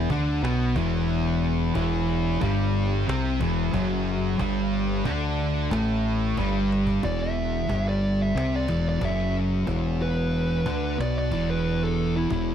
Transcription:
0.10 0.40 D2 loud
0.10 0.42 D3 medium
0.10 0.43 D4 medium
0.10 cajon bass loud
0.42 0.73 B1 loud
0.42 0.75 B2 medium
0.42 0.75 B3 loud
0.42 cajon slap loud
0.75 1.71 E1 medium
0.75 1.74 E2 medium
0.75 1.75 E3 loud
0.75 cajon bass loud
1.44 cajon slap soft
1.75 2.37 E1 medium
1.75 2.40 E2 medium
1.75 2.40 E3 loud
1.75 cajon bass loud
2.41 3.03 G1 loud
2.41 3.06 G2 medium
2.41 3.07 G3 loud
2.41 cajon bass loud
3.07 3.38 C2 medium
3.07 3.39 C3 loud
3.07 3.39 C4 loud
3.07 cajon slap loud
3.40 3.71 E1 loud
3.40 3.72 E2 medium
3.40 3.73 E3 loud
3.40 cajon bass loud
3.73 4.36 F#1 loud
3.73 4.38 F#2 medium
3.73 4.38 F#3 loud
3.73 cajon bass loud
4.08 cajon slap soft
4.39 5.01 G1 medium
4.39 5.04 G2 medium
4.39 5.04 G3 loud
4.39 cajon bass loud
5.04 5.67 D2 medium
5.04 5.70 D3 medium
5.04 5.70 D4 loud
5.04 cajon bass loud
5.71 6.33 A1 loud
5.71 6.36 A2 medium
5.71 6.36 A3 loud
5.71 cajon bass loud
5.71 cajon slap loud
6.37 6.99 G1 medium
6.37 7.02 G2 medium
6.37 7.03 G3 loud
6.37 cajon bass loud
6.72 cajon slap medium
6.87 cajon bass medium
7.03 7.65 E1 loud
7.03 7.68 E2 loud
7.03 7.69 E3 medium
7.03 7.20 D5 loud
7.03 cajon bass loud
7.23 7.85 E5 medium
7.69 8.31 G1 loud
7.69 8.34 G2 medium
7.69 8.35 G3 medium
7.69 cajon bass loud
7.89 8.19 D5 medium
8.22 8.53 E5 medium
8.35 8.65 C2 loud
8.35 8.67 C3 loud
8.35 8.67 C4 loud
8.35 cajon slap loud
8.56 8.86 D5 medium
8.68 8.99 E1 medium
8.68 9.02 E2 medium
8.68 9.02 E3 medium
8.68 cajon bass loud
8.89 9.03 D5 medium
9.01 9.63 F#1 medium
9.01 9.66 F#2 medium
9.01 9.67 F#3 loud
9.01 9.35 E5 loud
9.01 cajon bass loud
9.67 10.62 E1 medium
9.67 10.65 E2 medium
9.67 10.65 E3 loud
9.67 cajon bass loud
10.02 10.97 B4 medium
10.66 10.97 D2 medium
10.66 10.98 D3 medium
10.66 10.98 D4 loud
10.66 cajon bass loud
10.99 11.29 B1 loud
10.99 11.31 B2 medium
10.99 11.31 B3 loud
10.99 11.16 D5 medium
10.99 cajon slap loud
11.18 11.49 D5 medium
11.31 12.27 E1 medium
11.31 12.29 E2 medium
11.31 12.30 E3 medium
11.31 cajon bass loud
11.51 11.81 B4 medium
11.83 12.14 A4 medium
11.99 cajon slap soft
12.16 12.31 E4 medium
12.30 12.55 E1 loud
12.30 12.55 E2 medium
12.30 12.55 E3 loud
12.30 12.55 E4 loud
12.30 cajon bass loud

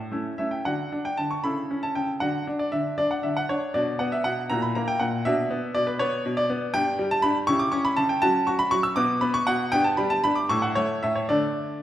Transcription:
0.00 0.11 A2 medium
0.12 0.31 A3 soft
0.12 0.32 C#4 soft
0.12 0.32 E4 soft
0.38 0.59 A3 soft
0.38 0.59 C#4 soft
0.38 0.59 E4 soft
0.38 0.52 E5 medium
0.51 0.65 G5 soft
0.65 0.92 D3 medium
0.65 0.91 D4 soft
0.65 1.42 F#4 soft
0.65 1.05 F#5 medium
0.92 1.18 D4 soft
1.05 1.19 G5 medium
1.17 1.45 D3 soft
1.17 1.32 A5 medium
1.31 1.45 C#6 medium
1.44 1.70 C#3 medium
1.44 2.18 E4 soft
1.44 2.18 A4 soft
1.44 1.83 B5 medium
1.71 1.96 C#4 soft
1.83 1.96 A5 medium
1.95 2.21 C#3 soft
1.95 2.11 G5 medium
2.20 2.47 D3 medium
2.20 2.46 D4 soft
2.20 3.71 F#4 soft
2.20 2.44 F#5 medium
2.47 2.73 D4 soft
2.59 2.73 D5 medium
2.72 2.98 D3 medium
2.72 2.96 E5 medium
2.98 3.24 D4 soft
2.98 3.11 D5 medium
3.11 3.24 F#5 medium
3.23 3.49 D3 medium
3.23 3.37 E5 medium
3.37 3.50 F#5 medium
3.49 3.74 D4 soft
3.49 3.75 C#5 medium
3.74 4.00 B2 medium
3.74 4.47 D4 soft
3.74 4.47 F#4 soft
3.74 4.00 D5 medium
3.99 4.25 B3 medium
3.99 4.12 F#5 medium
4.12 4.25 E5 medium
4.24 4.50 B2 medium
4.24 4.40 F#5 medium
4.50 4.75 A#2 medium
4.50 5.22 E4 soft
4.50 5.22 F#4 soft
4.50 4.63 A#5 medium
4.62 4.75 B5 medium
4.75 5.00 A#3 medium
4.75 4.88 A#5 medium
4.88 5.01 G5 medium
5.00 5.25 A#2 medium
5.00 5.25 F#5 medium
5.25 5.50 B2 medium
5.25 6.71 D4 medium
5.25 6.71 F#4 soft
5.25 5.75 E5 medium
5.50 5.75 B3 medium
5.75 6.00 B2 medium
5.75 5.88 D5 medium
5.87 6.00 B4 medium
5.99 6.25 B3 medium
5.99 6.37 C#5 medium
6.26 6.50 B2 medium
6.37 6.50 D5 medium
6.50 6.74 B3 medium
6.74 6.99 G2 medium
6.74 7.44 D4 medium
6.74 7.44 G4 medium
6.74 7.07 G5 loud
6.99 7.23 G3 medium
7.11 7.24 A5 loud
7.22 7.47 G2 medium
7.22 7.37 B5 loud
7.47 7.72 C#3 medium
7.47 8.19 E4 medium
7.47 8.19 G4 medium
7.47 7.60 C#6 loud
7.59 7.72 D6 medium
7.72 7.97 C#4 medium
7.72 7.85 C#6 medium
7.85 7.98 B5 loud
7.97 8.22 C#3 medium
7.97 8.10 A5 loud
8.09 8.22 G5 medium
8.22 8.47 F#3 medium
8.22 8.94 C#4 medium
8.22 8.46 F#4 medium
8.22 8.47 A5 loud
8.47 8.72 F#4 medium
8.47 8.60 C#6 medium
8.59 8.72 B5 loud
8.71 8.96 F#3 medium
8.71 8.84 C#6 loud
8.83 8.97 E6 medium
8.96 9.22 B2 medium
8.96 9.21 B3 medium
8.96 9.69 F#4 medium
8.96 9.22 D6 loud
9.21 9.47 B3 medium
9.21 9.34 B5 medium
9.34 9.47 C#6 loud
9.47 9.72 B2 medium
9.47 9.73 F#5 loud
9.72 9.98 G2 medium
9.72 10.47 B3 medium
9.72 10.47 G4 medium
9.72 9.85 G5 loud
9.84 9.98 A5 medium
9.97 10.24 G3 medium
9.97 10.11 B5 medium
10.10 10.24 A5 loud
10.24 10.50 G2 medium
10.24 10.37 B5 loud
10.36 10.50 D6 medium
10.49 10.76 A2 medium
10.49 10.75 A3 medium
10.49 11.26 E4 medium
10.49 10.63 C#6 loud
10.62 10.76 F#5 medium
10.75 11.03 A3 medium
10.75 11.00 C#5 medium
11.03 11.29 A2 medium
11.03 11.16 E5 medium
11.15 11.29 C#5 medium
11.29 11.82 D3 medium
11.29 11.82 A3 medium
11.29 11.82 D4 medium
11.29 11.77 D5 medium

